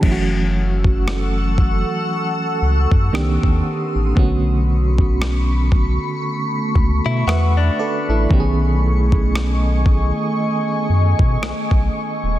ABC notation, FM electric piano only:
X:1
M:4/4
L:1/16
Q:"Swing 16ths" 1/4=58
K:F#phr
V:1 name="FM electric piano"
z16 | z12 [Be]2 [Ad] [EA]- | [EA] z12 z3 |]
V:2 name="FM electric piano"
[E,F,A,CEF]12 [_E,_B,=CDG]4 | [D,A,B,CF]16 | [^D,A,B,CG^G]16 |]